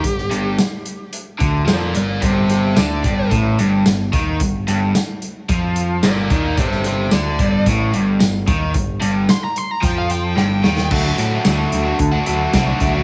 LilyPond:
<<
  \new Staff \with { instrumentName = "Lead electric guitar" } { \time 4/4 \key g \minor \tempo 4 = 110 g'4 r2 <bes' d''>8 <bes' d''>8 | <g' c''>8 <g' c''>8 d''4 r2 | r2. <bes' d''>8 <bes' d''>8 | <g' c''>8 <g' c''>8 d''4 r2 |
r4 c'''16 bes''16 c'''16 bes''16 g''16 f''16 g''8 g''4 | r1 | }
  \new Staff \with { instrumentName = "Overdriven electric guitar" } { \clef bass \time 4/4 \key g \minor g,8 g,8 r4. d8 f8 g,8 | g,4 d8 g,8 a,8 g,8 g,8 ees8 | g,8 g,8 r4 f4 g,8 ees8 | g,4 d8 g,8 a,8 g,8 g,8 ees8 |
g,8 g,8 r4 f4 g,8 ees8 | <d fis a d' fis'>16 <a d' fis'>16 <fis a d' fis'>8 <d fis a d' fis'>8. <a d' fis'>8 <a d' fis'>16 <fis a d' fis'>8 <d fis a d' fis'>16 <a d' fis'>16 <fis a d' fis'>16 <a d' fis'>16 | }
  \new Staff \with { instrumentName = "Picked electric bass" } { \clef bass \time 4/4 \key g \minor g,,8 g,,8 r4. d,8 f,8 g,,8 | g,,4 d,8 g,,8 a,,8 g,,8 g,,8 ees,8 | g,,8 g,,8 r4 f,4 g,,8 ees,8 | g,,4 d,8 g,,8 a,,8 g,,8 g,,8 ees,8 |
g,,8 g,,8 r4 f,4 g,,8 ees,8 | d,8 a,8 d,8 d,8 d,8 d,8 c,8 d,8 | }
  \new DrumStaff \with { instrumentName = "Drums" } \drummode { \time 4/4 <hh bd>16 sn16 hh8 <hh sn tamb>8 hh8 hh8 <hh bd>8 <hh sn tamb>8 hh8 | <hh bd>8 <hh sn>8 <hh sn tamb>8 <hh bd>8 <hh bd>8 hh8 <hh sn tamb>8 <hh bd>8 | <hh bd>8 <hh sn>8 <hh sn tamb>8 hh8 <hh bd>8 hh8 <hh sn tamb>8 <hh bd>8 | <hh bd>16 sn16 <hh sn>8 <hh sn tamb>8 <hh bd>8 <hh bd>8 hh8 <hh sn tamb>8 <hh bd>8 |
<hh bd>8 hh8 <hh sn tamb>8 hh8 <hh bd>8 hh8 sn8 sn16 sn16 | <cymc bd>8 hh8 <hh sn tamb>8 hh8 <hh bd>8 hh8 <hh bd sn tamb>8 <hh bd>8 | }
>>